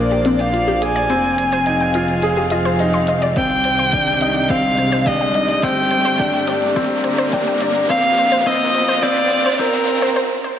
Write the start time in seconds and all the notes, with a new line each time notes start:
Already playing: A#1 A#3 D4 F4 C5 D5, riser
0.11 G4, closed hi-hat
0.25 C4 D4, closed hi-hat
0.39 F5 G5, closed hi-hat
0.53 F4, closed hi-hat
0.68 G4, closed hi-hat
0.82 G#4 D5 G#5, closed hi-hat
0.96 D5, closed hi-hat
1.10 F1 F3 C4 C5, closed hi-hat
1.18 C4
1.24 F5, closed hi-hat
1.38 C5, closed hi-hat
1.47 G#4
1.52 C5, closed hi-hat
1.66 D#4 G5, closed hi-hat
1.80 G5, closed hi-hat
1.94 F4 D#5, closed hi-hat
2.08 closed hi-hat
2.22 G#4, closed hi-hat
2.37 G4, closed hi-hat
2.50 F4 D#5, closed hi-hat
2.65 C5, closed hi-hat
2.79 D#4, closed hi-hat
2.93 C6, closed hi-hat
3.07 D#5, closed hi-hat
3.22 D5, closed hi-hat
3.36 C2 C3 C4 C5 G5, kick, closed hi-hat
3.50 closed hi-hat
3.63 D#3 C5, closed hi-hat
3.79 C5, closed hi-hat
3.91 G3 D4 G5, kick, closed hi-hat
4.07 G5, closed hi-hat
4.21 D#4 D#5, closed hi-hat
4.35 closed hi-hat
4.43 G5
4.49 C4 C5 F5, kick, closed hi-hat
4.63 closed hi-hat
4.77 C5, closed hi-hat
4.92 C5, closed hi-hat
5.06 D4 D#5 G5, kick, closed hi-hat
5.20 G5, closed hi-hat
5.34 D#4 D#5, closed hi-hat
5.49 closed hi-hat
5.62 G1 C4 C5 G5, kick, closed hi-hat
5.77 closed hi-hat
5.91 C5, closed hi-hat
5.98 D3 G4
6.05 C5, closed hi-hat
6.19 D4 G5, kick, closed hi-hat
6.33 G5, closed hi-hat
6.48 D4 D5, closed hi-hat
6.62 A#4, closed hi-hat
6.76 C4 C5, kick, closed hi-hat
6.91 closed hi-hat
7.04 C5, closed hi-hat
7.18 C5, closed hi-hat
7.32 D4 G5, kick, closed hi-hat
7.46 G5, closed hi-hat
7.61 D4 D5, closed hi-hat
7.75 closed hi-hat
7.89 A#1 A#3 C4 C5 F5, kick, closed hi-hat
8.04 closed hi-hat
8.08 C5
8.18 C5, closed hi-hat
8.30 F4 C5, closed hi-hat
8.46 C4 C5 D#5, kick, closed hi-hat
8.60 closed hi-hat
8.69 F5
8.75 C5, closed hi-hat
8.88 C5, closed hi-hat
9.02 C4 C5 D5, kick, closed hi-hat
9.17 closed hi-hat
9.31 C5, closed hi-hat
9.45 C5, closed hi-hat
9.59 C4 A#4 C5, kick, closed hi-hat
9.74 closed hi-hat
9.88 C5, closed hi-hat
10.02 C5, closed hi-hat
10.16 C5
10.44 C5